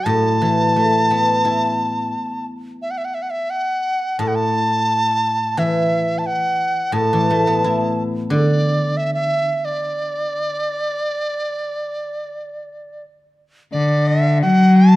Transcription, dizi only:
0.06 2.46 A5 medium
2.82 2.92 E5 medium
2.91 2.99 F#5 medium
2.98 3.06 E5 medium
3.05 3.16 F#5 medium
3.14 3.24 E5 medium
3.22 3.32 F#5 medium
3.30 3.52 E5 medium
3.50 4.21 F#5 medium
4.19 4.29 A5 medium
4.28 4.37 F#5 medium
4.35 5.60 A5 medium
5.58 6.20 E5 medium
6.18 6.28 A5 medium
6.26 6.95 F#5 medium
6.93 8.03 A5 medium
8.31 8.99 D5 medium
8.97 9.13 E5 medium
9.14 9.66 E5 medium
9.65 13.04 D5 medium
13.72 14.09 D5 medium
14.08 14.41 E5 medium
14.42 14.78 F#5 medium
14.76 14.96 A5 medium

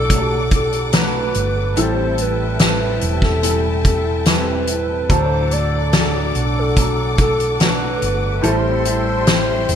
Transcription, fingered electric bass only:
0.00 1.31 B1 medium
1.36 1.74 G1 medium
1.78 2.98 A1 medium
3.02 5.06 E1 medium
5.10 6.31 D2 medium
6.35 7.98 B1 medium
8.02 8.41 G1 medium
8.44 9.65 A1 medium
9.69 9.75 E1 medium

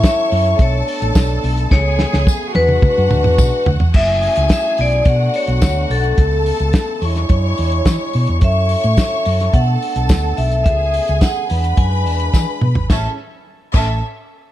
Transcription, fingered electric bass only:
0.32 0.53 F#2 loud
0.60 0.81 B1 loud
1.02 1.12 A1 loud
1.15 1.37 B1 medium
1.44 1.65 B1 loud
1.72 2.03 C#2 loud
2.14 2.24 C#2 loud
2.56 2.77 E2 loud
2.98 3.08 F#2 loud
3.12 3.22 D2 medium
3.26 3.36 E2 loud
3.39 3.50 B1 medium
3.68 3.78 D2 medium
3.81 3.92 E2 medium
3.95 4.27 F#1 loud
4.37 4.48 C#2 medium
4.79 5.00 B1 medium
5.06 5.27 B2 medium
5.48 5.59 B1 loud
5.62 5.84 D2 medium
5.90 6.11 B1 medium
6.18 6.50 C#2 loud
6.60 6.71 C#2 medium
7.02 7.23 E2 medium
7.30 7.52 F#2 medium
7.59 7.80 E2 loud
7.86 7.97 E3 medium
8.15 8.25 B2 medium
8.29 8.39 E2 medium
8.42 8.74 F#2 loud
8.84 8.95 A2 loud
9.26 9.48 F#2 medium
9.54 9.75 B2 loud
9.96 10.10 B1 medium
10.10 10.32 D2 medium
10.38 10.66 B1 medium
10.66 10.98 C#2 loud
11.09 11.19 C#2 medium
11.51 11.72 E2 loud
11.78 12.07 F#2 medium
12.07 12.28 E2 medium
12.34 12.45 E3 medium
12.62 12.73 B2 medium
12.77 12.87 G#1 medium
12.90 13.06 A1 loud
13.74 14.00 A1 loud

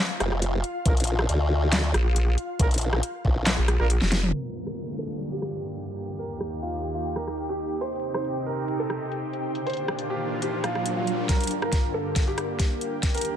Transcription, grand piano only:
4.33 4.61 A#4 medium
4.67 4.93 A#4 medium
4.99 5.26 A4 medium
5.32 5.67 G4 medium
6.19 6.37 A#4 medium
6.62 6.89 F4 medium
6.94 7.12 F4 medium
7.16 7.43 A#4 medium
7.49 7.76 G4 medium
7.81 8.08 C5 medium
8.14 8.41 C5 medium
8.46 8.74 A#4 medium
8.80 9.15 A4 medium
9.66 9.84 C5 medium
10.10 10.37 G4 medium
10.42 10.60 G4 medium
10.64 10.91 F4 medium
10.97 11.24 F4 medium
11.29 11.56 A#4 medium
11.62 11.89 A#4 medium
11.94 12.21 A4 medium
12.27 12.63 G4 medium
13.14 13.32 A#4 medium

